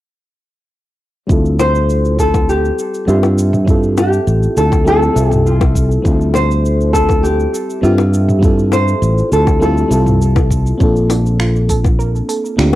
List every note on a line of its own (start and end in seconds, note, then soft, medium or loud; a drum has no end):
1.27 2.70 D2 medium
1.27 3.03 G3 medium
1.27 3.04 C4 medium
1.27 3.04 E4 medium
1.27 kick loud
1.27 shaker soft
1.31 3.05 F4 medium
1.31 3.06 A4 medium
1.45 shaker soft
1.59 2.19 C5 medium
1.59 high bongo medium
1.59 shaker medium
1.75 shaker soft
1.90 shaker soft
2.05 shaker soft
2.19 2.50 A4 medium
2.19 kick soft
2.19 shaker medium
2.34 kick medium
2.34 high bongo medium
2.34 shaker soft
2.49 3.08 G4 medium
2.49 shaker soft
2.65 shaker soft
2.79 shaker medium
2.94 shaker soft
3.06 4.18 G2 medium
3.06 3.63 G3 medium
3.06 3.64 C4 medium
3.06 3.50 F4 medium
3.06 3.64 F4 medium
3.06 3.65 G4 medium
3.06 3.64 E5 medium
3.06 shaker soft
3.23 high bongo medium
3.23 shaker soft
3.38 shaker medium
3.53 mid tom medium
3.53 shaker soft
3.65 4.81 G3 medium
3.65 4.82 C4 medium
3.65 4.83 E4 medium
3.65 kick loud
3.65 shaker soft
3.69 4.83 F4 medium
3.69 4.84 A4 medium
3.83 shaker soft
3.98 4.59 G4 medium
3.98 high bongo medium
3.98 shaker medium
4.13 shaker soft
4.27 4.46 A1 medium
4.27 shaker soft
4.43 shaker soft
4.57 5.08 D2 medium
4.57 4.85 A4 medium
4.57 shaker medium
4.72 kick loud
4.72 high bongo medium
4.72 shaker soft
4.84 5.12 G3 medium
4.84 5.12 C4 medium
4.84 5.12 E4 medium
4.84 5.13 F4 medium
4.84 5.13 A4 loud
4.84 5.29 A4 loud
4.84 shaker soft
5.03 shaker soft
5.13 5.96 C2 medium
5.13 6.00 G3 medium
5.13 6.01 C4 medium
5.13 6.02 E5 medium
5.13 shaker medium
5.18 6.02 F4 medium
5.18 6.03 A4 medium
5.29 5.42 G4 loud
5.29 mid tom medium
5.29 shaker soft
5.46 5.88 F4 medium
5.46 shaker soft
5.61 kick loud
5.61 high bongo medium
5.61 shaker soft
5.75 kick medium
5.75 shaker medium
5.91 shaker soft
6.02 7.45 D2 medium
6.02 7.78 G3 medium
6.02 7.79 C4 medium
6.02 7.80 E4 medium
6.02 kick loud
6.02 shaker soft
6.07 7.81 F4 medium
6.07 7.81 A4 medium
6.21 shaker soft
6.34 6.93 C5 loud
6.34 high bongo medium
6.34 shaker medium
6.51 shaker soft
6.65 shaker soft
6.81 shaker soft
6.93 7.24 A4 medium
6.93 kick medium
6.93 shaker medium
7.09 kick loud
7.09 high bongo medium
7.09 shaker soft
7.23 7.79 G4 medium
7.23 shaker soft
7.40 shaker soft
7.54 shaker medium
7.70 shaker soft
7.82 8.93 G2 medium
7.82 8.38 G3 medium
7.82 8.39 C4 medium
7.82 8.25 F4 medium
7.82 8.39 F4 medium
7.82 8.40 G4 medium
7.82 8.39 E5 medium
7.82 shaker soft
7.98 high bongo medium
7.98 shaker soft
8.14 shaker medium
8.29 mid tom medium
8.29 shaker soft
8.39 9.56 G3 medium
8.39 9.57 C4 medium
8.39 9.58 E4 medium
8.39 kick loud
8.43 9.58 F4 medium
8.43 9.59 A4 medium
8.43 shaker soft
8.59 shaker soft
8.72 9.28 C5 loud
8.72 high bongo medium
8.72 shaker medium
8.88 shaker soft
9.02 9.21 A1 medium
9.02 shaker soft
9.18 shaker soft
9.32 9.83 D2 medium
9.32 9.61 A4 medium
9.32 shaker medium
9.47 kick loud
9.47 high bongo medium
9.47 shaker soft
9.60 9.87 G3 medium
9.60 9.87 C4 medium
9.60 9.88 E4 medium
9.60 9.88 F4 medium
9.60 10.47 A4 medium
9.60 9.88 A4 loud
9.60 shaker soft
9.78 shaker soft
9.88 10.71 C2 medium
9.88 10.75 G3 medium
9.88 10.76 C4 medium
9.88 10.77 E4 medium
9.88 shaker medium
9.92 10.77 F4 medium
9.92 10.78 A4 medium
10.06 mid tom medium
10.06 shaker soft
10.22 shaker soft
10.36 kick loud
10.36 high bongo medium
10.36 shaker soft
10.51 kick medium
10.51 shaker medium
10.67 shaker soft
10.78 12.20 A#1 medium
10.78 12.54 A#3 medium
10.78 12.54 C4 medium
10.78 10.95 C4 medium
10.78 12.55 D4 medium
10.78 kick loud
10.78 shaker soft
10.82 12.56 F4 medium
10.82 12.57 A4 medium
10.96 shaker soft
11.10 11.18 D4 medium
11.10 open hi-hat medium
11.10 high bongo medium
11.10 shaker medium
11.26 shaker soft
11.40 11.54 F4 medium
11.40 finger snap medium
11.40 shaker soft
11.56 shaker soft
11.69 11.78 A4 medium
11.69 kick medium
11.69 open hi-hat medium
11.69 shaker medium
11.84 kick medium
11.84 high bongo medium
11.84 shaker soft
11.99 12.13 A#4 medium
11.99 shaker soft
12.16 shaker soft
12.29 12.43 A4 medium
12.29 open hi-hat medium
12.29 shaker medium
12.45 shaker soft
12.57 12.75 D2 medium
12.57 12.75 A#3 medium
12.57 12.75 C4 medium
12.57 12.75 D4 medium
12.57 12.73 F4 medium
12.57 12.75 F4 medium
12.57 12.75 G4 medium
12.57 finger snap medium
12.57 shaker soft